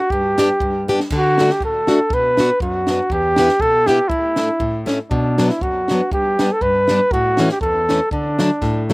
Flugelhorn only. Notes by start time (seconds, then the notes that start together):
Already playing: F#4
0.11 G4
1.16 F#4
1.52 G4
1.65 A4
2.14 B4
2.62 F#4
3.12 G4
3.61 A4
3.87 G4
4.08 E4
5.10 D4
5.49 E4
5.62 F#4
6.13 G4
6.52 A4
6.62 B4
7.12 F#4
7.52 G4
7.62 A4
8.12 D4